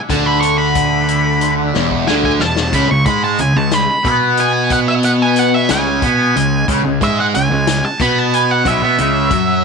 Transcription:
0.09 D2 D3 A5, kick, closed hi-hat
0.26 B5
0.41 C#6, closed hi-hat
0.58 B5
0.75 kick, closed hi-hat
1.08 closed hi-hat
1.41 closed hi-hat
1.74 E1 E2, snare
1.91 kick
2.07 D2 D3 G#5, snare
2.24 G#5, kick
2.40 E1 E2 A5, snare
2.56 snare
2.73 C#2 C#3 B5, kick, closed hi-hat
2.90 C#2 C#3 C#6
3.06 G#2 G#3 B5, kick, closed hi-hat
3.24 A5
3.38 C#2 C#3 G#5, closed hi-hat
3.56 C#2 C#3 A5
3.71 B5, snare, closed hi-hat
4.04 B2 B3 B5, kick, closed hi-hat
4.37 G#5, closed hi-hat
4.70 F#5, kick, closed hi-hat
4.88 E5
5.03 F#5, closed hi-hat
5.22 G#5
5.36 F#5, closed hi-hat
5.54 E5
5.69 C#2 C#3 G#5, snare, closed hi-hat
6.02 B2 B3, kick, closed hi-hat
6.35 C#2 C#3, closed hi-hat
6.68 C#2 C#3, kick, closed hi-hat
6.85 C#2 C#3
7.01 G#2 G#3 E5, kick, closed hi-hat
7.20 F#5
7.35 C#2 C#3 G#5, closed hi-hat
7.51 C#2 C#3
7.67 snare, closed hi-hat
7.85 A5
8.00 B2 B3 B5, kick, closed hi-hat
8.19 A5
8.34 G#5, closed hi-hat
8.51 F#5
8.65 B1 B2 E5, kick, closed hi-hat
8.82 B2 B3
8.98 C#2 C#3, closed hi-hat
9.30 F#2 F#3, kick, closed hi-hat

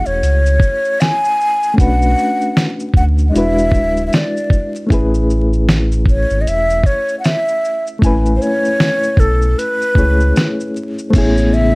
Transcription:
Already playing: A3 C#4 E4 F#4 G#4
0.06 E1 C#5, shaker
0.23 C#2, closed hi-hat, shaker
0.46 shaker
0.60 kick, shaker
0.85 shaker
1.01 G#5, snare, closed hi-hat, shaker
1.25 shaker
1.41 shaker
1.63 shaker
1.74 A3 C#4 D4
1.78 B1 F#4 B4 F#5, kick, closed hi-hat, shaker
2.02 shaker
2.18 shaker
2.41 shaker
2.57 snare, closed hi-hat, shaker
2.80 shaker
2.94 D2 F#5, kick, shaker
3.18 shaker
3.29 G#3 D4 D#5
3.34 E1 E4 F#4 B4 E5, closed hi-hat, shaker
3.58 shaker
3.72 D1, kick, shaker
3.97 shaker
4.07 E5
4.13 D5, snare, closed hi-hat, shaker
4.37 shaker
4.50 kick, shaker
4.75 shaker
4.87 A3 C#4 E4, kick
4.91 A1 G#4 B4, closed hi-hat, shaker
5.14 shaker
5.30 shaker
5.53 shaker
5.69 snare, closed hi-hat, shaker
5.92 shaker
6.06 C#5, kick, shaker
6.30 G#1, shaker
6.41 D#5
6.47 E1 E5, closed hi-hat, shaker
6.70 shaker
6.84 C#5, kick, shaker
7.09 shaker
7.20 F#5
7.24 E5, snare, closed hi-hat, shaker
7.48 shaker
7.65 shaker
7.87 shaker
7.99 A1 A3 C#4 E4, kick
8.03 B4 G#5, closed hi-hat, shaker
8.26 shaker
8.36 C5
8.42 C#5, shaker
8.65 shaker
8.80 snare, closed hi-hat, shaker
9.03 shaker
9.17 B1 A4, kick, shaker
9.42 shaker
9.59 B4, closed hi-hat, shaker
9.82 shaker
9.95 C#2 A3 C#4 E4 G#4 C#5, kick, shaker
10.20 shaker
10.36 snare, closed hi-hat, shaker
10.60 shaker
10.76 shaker
10.99 shaker
11.09 A3 B3 C5
11.13 A1 C#3 A3 B3 C#4 E4 G#4 C#5, kick, closed hi-hat, crash, shaker
11.18 G#4
11.37 shaker
11.53 E5, shaker

